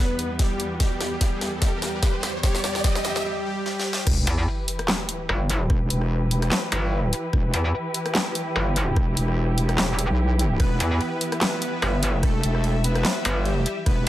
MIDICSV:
0, 0, Header, 1, 8, 480
1, 0, Start_track
1, 0, Key_signature, 1, "minor"
1, 0, Tempo, 408163
1, 942, Time_signature, 4, 2, 24, 8
1, 16566, End_track
2, 0, Start_track
2, 0, Title_t, "Supersaw synth"
2, 0, Program_c, 0, 81
2, 0, Note_on_c, 0, 59, 76
2, 0, Note_on_c, 0, 71, 90
2, 375, Note_off_c, 0, 59, 0
2, 375, Note_off_c, 0, 71, 0
2, 461, Note_on_c, 0, 55, 79
2, 462, Note_on_c, 0, 67, 94
2, 855, Note_off_c, 0, 55, 0
2, 855, Note_off_c, 0, 67, 0
2, 942, Note_on_c, 0, 67, 97
2, 943, Note_on_c, 0, 55, 75
2, 1816, Note_off_c, 0, 55, 0
2, 1816, Note_off_c, 0, 67, 0
2, 1901, Note_on_c, 0, 67, 100
2, 1902, Note_on_c, 0, 55, 77
2, 2775, Note_off_c, 0, 55, 0
2, 2775, Note_off_c, 0, 67, 0
2, 2861, Note_on_c, 0, 55, 75
2, 2861, Note_on_c, 0, 67, 100
2, 3324, Note_off_c, 0, 55, 0
2, 3324, Note_off_c, 0, 67, 0
2, 3342, Note_on_c, 0, 55, 75
2, 3342, Note_on_c, 0, 67, 105
2, 3805, Note_off_c, 0, 55, 0
2, 3805, Note_off_c, 0, 67, 0
2, 3821, Note_on_c, 0, 55, 83
2, 3822, Note_on_c, 0, 67, 108
2, 4045, Note_off_c, 0, 55, 0
2, 4045, Note_off_c, 0, 67, 0
2, 4062, Note_on_c, 0, 55, 82
2, 4063, Note_on_c, 0, 67, 102
2, 4285, Note_off_c, 0, 55, 0
2, 4285, Note_off_c, 0, 67, 0
2, 4303, Note_on_c, 0, 55, 81
2, 4303, Note_on_c, 0, 67, 111
2, 4525, Note_off_c, 0, 55, 0
2, 4525, Note_off_c, 0, 67, 0
2, 4543, Note_on_c, 0, 67, 101
2, 4544, Note_on_c, 0, 55, 81
2, 4766, Note_off_c, 0, 55, 0
2, 4766, Note_off_c, 0, 67, 0
2, 12462, Note_on_c, 0, 59, 77
2, 12462, Note_on_c, 0, 71, 107
2, 13336, Note_off_c, 0, 59, 0
2, 13336, Note_off_c, 0, 71, 0
2, 13422, Note_on_c, 0, 59, 80
2, 13422, Note_on_c, 0, 71, 102
2, 14295, Note_off_c, 0, 59, 0
2, 14295, Note_off_c, 0, 71, 0
2, 14382, Note_on_c, 0, 69, 96
2, 14383, Note_on_c, 0, 57, 81
2, 15016, Note_off_c, 0, 57, 0
2, 15016, Note_off_c, 0, 69, 0
2, 15102, Note_on_c, 0, 59, 79
2, 15102, Note_on_c, 0, 71, 104
2, 15736, Note_off_c, 0, 59, 0
2, 15736, Note_off_c, 0, 71, 0
2, 15823, Note_on_c, 0, 55, 76
2, 15823, Note_on_c, 0, 67, 95
2, 16216, Note_off_c, 0, 55, 0
2, 16216, Note_off_c, 0, 67, 0
2, 16303, Note_on_c, 0, 59, 77
2, 16303, Note_on_c, 0, 71, 105
2, 16566, Note_off_c, 0, 59, 0
2, 16566, Note_off_c, 0, 71, 0
2, 16566, End_track
3, 0, Start_track
3, 0, Title_t, "String section"
3, 0, Program_c, 1, 48
3, 0, Note_on_c, 1, 40, 83
3, 0, Note_on_c, 1, 52, 74
3, 0, Note_on_c, 1, 55, 74
3, 0, Note_on_c, 1, 59, 87
3, 3774, Note_off_c, 1, 40, 0
3, 3775, Note_off_c, 1, 52, 0
3, 3775, Note_off_c, 1, 55, 0
3, 3775, Note_off_c, 1, 59, 0
3, 4782, Note_on_c, 1, 52, 81
3, 4783, Note_on_c, 1, 64, 80
3, 4783, Note_on_c, 1, 67, 75
3, 4783, Note_on_c, 1, 71, 94
3, 12442, Note_off_c, 1, 71, 0
3, 12463, Note_on_c, 1, 76, 89
3, 16566, Note_off_c, 1, 52, 0
3, 16566, Note_off_c, 1, 64, 0
3, 16566, Note_off_c, 1, 67, 0
3, 16566, Note_off_c, 1, 76, 0
3, 16566, End_track
4, 0, Start_track
4, 0, Title_t, "Wobble bass"
4, 0, Program_c, 2, 39
4, 5023, Note_on_c, 2, 40, 96
4, 5245, Note_off_c, 2, 40, 0
4, 6222, Note_on_c, 2, 31, 97
4, 6685, Note_off_c, 2, 31, 0
4, 7903, Note_on_c, 2, 31, 98
4, 8365, Note_off_c, 2, 31, 0
4, 8863, Note_on_c, 2, 40, 96
4, 9085, Note_off_c, 2, 40, 0
4, 10063, Note_on_c, 2, 31, 94
4, 10525, Note_off_c, 2, 31, 0
4, 11503, Note_on_c, 2, 28, 96
4, 11853, Note_off_c, 2, 28, 0
4, 12703, Note_on_c, 2, 40, 102
4, 12925, Note_off_c, 2, 40, 0
4, 13904, Note_on_c, 2, 31, 90
4, 14366, Note_off_c, 2, 31, 0
4, 15583, Note_on_c, 2, 31, 101
4, 16046, Note_off_c, 2, 31, 0
4, 16566, End_track
5, 0, Start_track
5, 0, Title_t, "Wobble bass"
5, 0, Program_c, 3, 39
5, 4783, Note_on_c, 3, 28, 102
5, 5005, Note_off_c, 3, 28, 0
5, 6702, Note_on_c, 3, 28, 103
5, 6925, Note_off_c, 3, 28, 0
5, 6942, Note_on_c, 3, 28, 101
5, 7645, Note_off_c, 3, 28, 0
5, 8623, Note_on_c, 3, 28, 102
5, 8845, Note_off_c, 3, 28, 0
5, 10543, Note_on_c, 3, 28, 100
5, 10765, Note_off_c, 3, 28, 0
5, 10783, Note_on_c, 3, 28, 98
5, 11485, Note_off_c, 3, 28, 0
5, 11875, Note_on_c, 3, 35, 102
5, 12446, Note_off_c, 3, 35, 0
5, 12463, Note_on_c, 3, 28, 99
5, 12686, Note_off_c, 3, 28, 0
5, 14383, Note_on_c, 3, 28, 99
5, 14605, Note_off_c, 3, 28, 0
5, 14623, Note_on_c, 3, 28, 97
5, 15325, Note_off_c, 3, 28, 0
5, 16303, Note_on_c, 3, 28, 100
5, 16526, Note_off_c, 3, 28, 0
5, 16566, End_track
6, 0, Start_track
6, 0, Title_t, "Riser"
6, 0, Program_c, 4, 103
6, 0, Note_on_c, 4, 60, 80
6, 3822, Note_off_c, 4, 60, 0
6, 16566, End_track
7, 0, Start_track
7, 0, Title_t, "Sub drop"
7, 0, Program_c, 5, 103
7, 4782, Note_on_c, 5, 60, 80
7, 6702, Note_off_c, 5, 60, 0
7, 16566, End_track
8, 0, Start_track
8, 0, Title_t, "Drums"
8, 222, Note_on_c, 9, 42, 54
8, 339, Note_off_c, 9, 42, 0
8, 461, Note_on_c, 9, 38, 66
8, 461, Note_on_c, 9, 42, 78
8, 462, Note_on_c, 9, 36, 96
8, 579, Note_off_c, 9, 38, 0
8, 579, Note_off_c, 9, 42, 0
8, 580, Note_off_c, 9, 36, 0
8, 702, Note_on_c, 9, 42, 53
8, 819, Note_off_c, 9, 42, 0
8, 941, Note_on_c, 9, 38, 70
8, 941, Note_on_c, 9, 42, 75
8, 942, Note_on_c, 9, 36, 97
8, 1059, Note_off_c, 9, 36, 0
8, 1059, Note_off_c, 9, 38, 0
8, 1059, Note_off_c, 9, 42, 0
8, 1182, Note_on_c, 9, 38, 77
8, 1182, Note_on_c, 9, 42, 49
8, 1300, Note_off_c, 9, 38, 0
8, 1300, Note_off_c, 9, 42, 0
8, 1422, Note_on_c, 9, 36, 99
8, 1422, Note_on_c, 9, 38, 74
8, 1422, Note_on_c, 9, 42, 76
8, 1539, Note_off_c, 9, 36, 0
8, 1540, Note_off_c, 9, 38, 0
8, 1540, Note_off_c, 9, 42, 0
8, 1662, Note_on_c, 9, 38, 76
8, 1662, Note_on_c, 9, 42, 47
8, 1780, Note_off_c, 9, 38, 0
8, 1780, Note_off_c, 9, 42, 0
8, 1902, Note_on_c, 9, 36, 96
8, 1902, Note_on_c, 9, 38, 87
8, 1902, Note_on_c, 9, 42, 75
8, 2019, Note_off_c, 9, 38, 0
8, 2019, Note_off_c, 9, 42, 0
8, 2020, Note_off_c, 9, 36, 0
8, 2142, Note_on_c, 9, 38, 83
8, 2142, Note_on_c, 9, 42, 52
8, 2260, Note_off_c, 9, 38, 0
8, 2260, Note_off_c, 9, 42, 0
8, 2382, Note_on_c, 9, 36, 100
8, 2382, Note_on_c, 9, 38, 85
8, 2382, Note_on_c, 9, 42, 71
8, 2499, Note_off_c, 9, 36, 0
8, 2500, Note_off_c, 9, 38, 0
8, 2500, Note_off_c, 9, 42, 0
8, 2623, Note_on_c, 9, 38, 94
8, 2623, Note_on_c, 9, 42, 50
8, 2740, Note_off_c, 9, 38, 0
8, 2740, Note_off_c, 9, 42, 0
8, 2862, Note_on_c, 9, 36, 93
8, 2862, Note_on_c, 9, 38, 86
8, 2862, Note_on_c, 9, 42, 70
8, 2980, Note_off_c, 9, 36, 0
8, 2980, Note_off_c, 9, 38, 0
8, 2980, Note_off_c, 9, 42, 0
8, 2994, Note_on_c, 9, 38, 78
8, 3103, Note_off_c, 9, 38, 0
8, 3103, Note_on_c, 9, 38, 89
8, 3103, Note_on_c, 9, 42, 49
8, 3221, Note_off_c, 9, 38, 0
8, 3221, Note_off_c, 9, 42, 0
8, 3234, Note_on_c, 9, 38, 80
8, 3342, Note_off_c, 9, 38, 0
8, 3342, Note_on_c, 9, 36, 97
8, 3342, Note_on_c, 9, 38, 93
8, 3342, Note_on_c, 9, 42, 74
8, 3460, Note_off_c, 9, 36, 0
8, 3460, Note_off_c, 9, 38, 0
8, 3460, Note_off_c, 9, 42, 0
8, 3474, Note_on_c, 9, 38, 89
8, 3583, Note_off_c, 9, 38, 0
8, 3583, Note_on_c, 9, 38, 97
8, 3583, Note_on_c, 9, 42, 50
8, 3700, Note_off_c, 9, 38, 0
8, 3700, Note_off_c, 9, 42, 0
8, 3714, Note_on_c, 9, 38, 88
8, 3832, Note_off_c, 9, 38, 0
8, 4303, Note_on_c, 9, 38, 66
8, 4420, Note_off_c, 9, 38, 0
8, 4463, Note_on_c, 9, 38, 82
8, 4580, Note_off_c, 9, 38, 0
8, 4623, Note_on_c, 9, 38, 98
8, 4741, Note_off_c, 9, 38, 0
8, 4783, Note_on_c, 9, 36, 114
8, 4783, Note_on_c, 9, 37, 61
8, 4783, Note_on_c, 9, 49, 103
8, 4900, Note_off_c, 9, 36, 0
8, 4901, Note_off_c, 9, 37, 0
8, 4901, Note_off_c, 9, 49, 0
8, 5023, Note_on_c, 9, 42, 82
8, 5141, Note_off_c, 9, 42, 0
8, 5503, Note_on_c, 9, 42, 81
8, 5621, Note_off_c, 9, 42, 0
8, 5634, Note_on_c, 9, 37, 72
8, 5634, Note_on_c, 9, 42, 37
8, 5743, Note_on_c, 9, 38, 119
8, 5743, Note_on_c, 9, 39, 95
8, 5752, Note_off_c, 9, 37, 0
8, 5752, Note_off_c, 9, 42, 0
8, 5860, Note_off_c, 9, 38, 0
8, 5860, Note_off_c, 9, 39, 0
8, 5983, Note_on_c, 9, 42, 85
8, 6100, Note_off_c, 9, 42, 0
8, 6222, Note_on_c, 9, 37, 73
8, 6340, Note_off_c, 9, 37, 0
8, 6462, Note_on_c, 9, 42, 83
8, 6580, Note_off_c, 9, 42, 0
8, 6702, Note_on_c, 9, 36, 119
8, 6702, Note_on_c, 9, 37, 58
8, 6820, Note_off_c, 9, 36, 0
8, 6820, Note_off_c, 9, 37, 0
8, 6942, Note_on_c, 9, 42, 78
8, 7060, Note_off_c, 9, 42, 0
8, 7074, Note_on_c, 9, 37, 54
8, 7191, Note_off_c, 9, 37, 0
8, 7422, Note_on_c, 9, 42, 76
8, 7540, Note_off_c, 9, 42, 0
8, 7554, Note_on_c, 9, 37, 75
8, 7554, Note_on_c, 9, 42, 36
8, 7662, Note_on_c, 9, 38, 127
8, 7662, Note_on_c, 9, 39, 99
8, 7671, Note_off_c, 9, 37, 0
8, 7671, Note_off_c, 9, 42, 0
8, 7780, Note_off_c, 9, 38, 0
8, 7780, Note_off_c, 9, 39, 0
8, 7902, Note_on_c, 9, 42, 79
8, 8020, Note_off_c, 9, 42, 0
8, 8382, Note_on_c, 9, 42, 80
8, 8500, Note_off_c, 9, 42, 0
8, 8622, Note_on_c, 9, 36, 122
8, 8623, Note_on_c, 9, 37, 59
8, 8740, Note_off_c, 9, 36, 0
8, 8740, Note_off_c, 9, 37, 0
8, 8863, Note_on_c, 9, 42, 75
8, 8980, Note_off_c, 9, 42, 0
8, 9342, Note_on_c, 9, 42, 78
8, 9460, Note_off_c, 9, 42, 0
8, 9474, Note_on_c, 9, 37, 77
8, 9474, Note_on_c, 9, 42, 37
8, 9583, Note_on_c, 9, 38, 127
8, 9583, Note_on_c, 9, 39, 93
8, 9592, Note_off_c, 9, 37, 0
8, 9592, Note_off_c, 9, 42, 0
8, 9700, Note_off_c, 9, 38, 0
8, 9700, Note_off_c, 9, 39, 0
8, 9823, Note_on_c, 9, 42, 83
8, 9940, Note_off_c, 9, 42, 0
8, 10063, Note_on_c, 9, 37, 76
8, 10181, Note_off_c, 9, 37, 0
8, 10303, Note_on_c, 9, 42, 81
8, 10420, Note_off_c, 9, 42, 0
8, 10543, Note_on_c, 9, 36, 123
8, 10544, Note_on_c, 9, 37, 64
8, 10660, Note_off_c, 9, 36, 0
8, 10661, Note_off_c, 9, 37, 0
8, 10783, Note_on_c, 9, 42, 74
8, 10901, Note_off_c, 9, 42, 0
8, 10915, Note_on_c, 9, 37, 58
8, 11033, Note_off_c, 9, 37, 0
8, 11263, Note_on_c, 9, 42, 73
8, 11381, Note_off_c, 9, 42, 0
8, 11395, Note_on_c, 9, 37, 77
8, 11395, Note_on_c, 9, 42, 35
8, 11503, Note_on_c, 9, 38, 127
8, 11503, Note_on_c, 9, 39, 91
8, 11512, Note_off_c, 9, 37, 0
8, 11512, Note_off_c, 9, 42, 0
8, 11621, Note_off_c, 9, 38, 0
8, 11621, Note_off_c, 9, 39, 0
8, 11744, Note_on_c, 9, 42, 80
8, 11861, Note_off_c, 9, 42, 0
8, 12223, Note_on_c, 9, 42, 75
8, 12341, Note_off_c, 9, 42, 0
8, 12463, Note_on_c, 9, 36, 119
8, 12463, Note_on_c, 9, 37, 63
8, 12463, Note_on_c, 9, 51, 62
8, 12581, Note_off_c, 9, 36, 0
8, 12581, Note_off_c, 9, 37, 0
8, 12581, Note_off_c, 9, 51, 0
8, 12703, Note_on_c, 9, 42, 81
8, 12821, Note_off_c, 9, 42, 0
8, 12943, Note_on_c, 9, 51, 45
8, 13061, Note_off_c, 9, 51, 0
8, 13183, Note_on_c, 9, 42, 74
8, 13301, Note_off_c, 9, 42, 0
8, 13315, Note_on_c, 9, 37, 80
8, 13315, Note_on_c, 9, 42, 35
8, 13423, Note_on_c, 9, 38, 124
8, 13423, Note_on_c, 9, 39, 91
8, 13423, Note_on_c, 9, 51, 69
8, 13432, Note_off_c, 9, 37, 0
8, 13432, Note_off_c, 9, 42, 0
8, 13541, Note_off_c, 9, 38, 0
8, 13541, Note_off_c, 9, 39, 0
8, 13541, Note_off_c, 9, 51, 0
8, 13663, Note_on_c, 9, 42, 76
8, 13780, Note_off_c, 9, 42, 0
8, 13903, Note_on_c, 9, 37, 83
8, 13903, Note_on_c, 9, 51, 47
8, 14021, Note_off_c, 9, 37, 0
8, 14021, Note_off_c, 9, 51, 0
8, 14143, Note_on_c, 9, 42, 80
8, 14261, Note_off_c, 9, 42, 0
8, 14383, Note_on_c, 9, 36, 114
8, 14383, Note_on_c, 9, 37, 68
8, 14383, Note_on_c, 9, 51, 69
8, 14501, Note_off_c, 9, 36, 0
8, 14501, Note_off_c, 9, 37, 0
8, 14501, Note_off_c, 9, 51, 0
8, 14623, Note_on_c, 9, 42, 80
8, 14741, Note_off_c, 9, 42, 0
8, 14755, Note_on_c, 9, 37, 60
8, 14863, Note_on_c, 9, 51, 50
8, 14873, Note_off_c, 9, 37, 0
8, 14981, Note_off_c, 9, 51, 0
8, 15103, Note_on_c, 9, 42, 75
8, 15221, Note_off_c, 9, 42, 0
8, 15235, Note_on_c, 9, 37, 82
8, 15235, Note_on_c, 9, 42, 36
8, 15343, Note_on_c, 9, 38, 124
8, 15343, Note_on_c, 9, 39, 88
8, 15343, Note_on_c, 9, 51, 70
8, 15352, Note_off_c, 9, 37, 0
8, 15352, Note_off_c, 9, 42, 0
8, 15461, Note_off_c, 9, 38, 0
8, 15461, Note_off_c, 9, 39, 0
8, 15461, Note_off_c, 9, 51, 0
8, 15583, Note_on_c, 9, 42, 82
8, 15700, Note_off_c, 9, 42, 0
8, 15823, Note_on_c, 9, 51, 46
8, 15940, Note_off_c, 9, 51, 0
8, 16063, Note_on_c, 9, 42, 80
8, 16181, Note_off_c, 9, 42, 0
8, 16303, Note_on_c, 9, 36, 110
8, 16303, Note_on_c, 9, 37, 63
8, 16303, Note_on_c, 9, 51, 70
8, 16421, Note_off_c, 9, 36, 0
8, 16421, Note_off_c, 9, 37, 0
8, 16421, Note_off_c, 9, 51, 0
8, 16566, End_track
0, 0, End_of_file